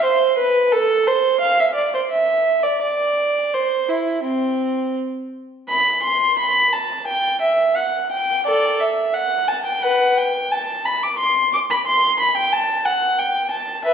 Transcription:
0.04 C5
0.38 B4
0.72 A4
1.07 C5
1.41 F5
1.60 E5
1.75 D5
1.95 C5
2.10 E5
2.63 D5
2.82 D5
3.54 C5
3.88 E4
4.23 C4
5.69 B5
6.03 C6
6.39 B5
6.73 A5
7.08 G5
7.41 E5
7.76 F#5
8.12 G5
8.47 A4 D5
8.80 E5
9.14 F#5
9.48 A5
9.66 G5
9.82 B4 F#5
10.17 G5
10.52 A5
10.85 B5
11.03 D6
11.19 C6
11.53 D6
11.70 B5
11.86 C6
12.20 B5
12.37 G5
12.53 A5
12.85 F#5
13.19 G5
13.51 A5
13.85 B4 E5

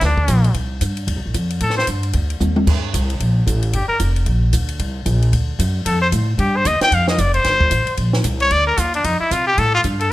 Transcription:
0.01 D2, kick, snare, ride
0.05 D4
0.17 kick
0.28 A#1, kick, hi-hat pedal, ride
0.44 ride
0.54 C2, kick, ride
0.81 G2, kick, hi-hat pedal, ride
0.97 ride
1.07 D#2, kick, ride
1.16 C2
1.26 A1
1.34 F2, kick, hi-hat pedal, ride
1.50 ride
1.60 A2 A4, kick, ride
1.70 snare
1.77 C5, snare
1.87 G2, kick, hi-hat pedal, ride
2.03 ride
2.13 D2, kick, ride
2.30 ride
2.40 D#2, hi-hat pedal, mid tom
2.56 mid tom
2.67 G2, kick, crash
2.94 C2, kick, hi-hat pedal, ride
3.10 ride
3.20 A#1, kick, ride
3.47 A1, kick, hi-hat pedal, ride
3.62 ride
3.73 G1 G4, kick, ride
3.88 A#4, muted upright bass stroke
4.00 F1, kick, hi-hat pedal, ride
4.16 ride
4.26 A#1, kick, ride
4.53 D2, kick, hi-hat pedal, ride
4.69 ride
4.79 C2, kick, ride
5.06 A#1, kick, hi-hat pedal, ride
5.22 ride
5.33 D2, kick, ride
5.59 F#2, kick, hi-hat pedal, ride
5.86 F2 A4, kick, ride
6.02 C5
6.12 A2, kick, hi-hat pedal, ride
6.38 G2 G4, kick, ride
6.56 C5
6.65 D#2 D#5, kick, hi-hat pedal, ride
6.80 G5, muted upright bass stroke, snare, ride
6.91 F2 F5, kick, ride
7.08 D#5, snare
7.18 F1 D5, kick, hi-hat pedal, ride
7.34 C5, ride
7.44 G1, kick, snare, ride
7.61 kick
7.71 A1, kick, hi-hat pedal, ride
7.87 muted upright bass stroke, ride
7.97 A#1, kick, ride
8.13 snare
8.24 C2, kick, hi-hat pedal, ride
8.40 C#5, ride
8.51 D2 D5, kick, ride
8.67 A#4
8.77 D#2 F4, kick, hi-hat pedal, ride
8.94 D4, ride
9.04 F2 D#4, kick, ride
9.20 E4, muted upright bass stroke
9.31 C3 F4, kick, hi-hat pedal, ride
9.47 G4
9.58 A2 A4, kick, ride
9.74 F4
9.84 G2, kick, hi-hat pedal, ride
10.00 A4, ride

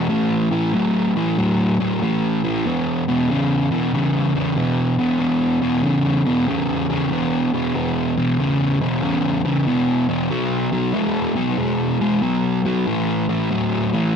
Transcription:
0.10 A2 E3
0.51 A2 E3
0.73 A2 F#3
1.16 A2 E3
1.38 A2 F#3
1.80 A2 F#3
2.02 A2 E3
2.44 A2 E3
2.66 E2 B2
3.08 E2 B2
3.30 E2 C#3
3.71 E2 B2
3.93 E2 C#3
4.35 E2 C#3
4.56 E2 B2
4.99 E2 B2
5.19 E2 B2
5.62 E2 B2
5.83 E2 C#3
6.26 E2 B2
6.47 E2 C#3
6.90 E2 C#3
7.11 E2 B2
7.53 E2 B2
7.75 E2 B2
8.17 E2 B2
8.39 E2 C#3
8.81 E2 B2
9.02 E2 C#3
9.45 E2 C#3
9.66 E2 B2
10.09 E2 B2
10.31 B2 F#3
10.73 B2 F#3
10.94 B2 G#3
11.36 B2 F#3
11.58 B2 G#3
12.01 B2 G#3
12.22 B2 F#3
12.65 B2 F#3
12.87 A2 E3
13.29 A2 E3
13.51 A2 F#3
13.93 A2 E3

